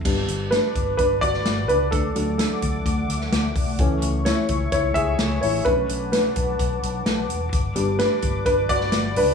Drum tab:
CC |x---------------|----------------|----------------|----------------|
HH |--x-x-x-x-x-x-x-|x-x-x-x-x-x-x-o-|x-x-x-x-x-x-x-o-|x-x-x-x-x-x-x-x-|
SD |----o------oo---|----o------oo---|----o-------o---|----o-------o---|
BD |o-----o-o-o-----|o-----o-o-----o-|o-----o-o-o-----|o-----o-o-------|

CC |----------------|
HH |x-x-x-x-x-x-x-o-|
SD |----o------oo---|
BD |o-----o-o-o-----|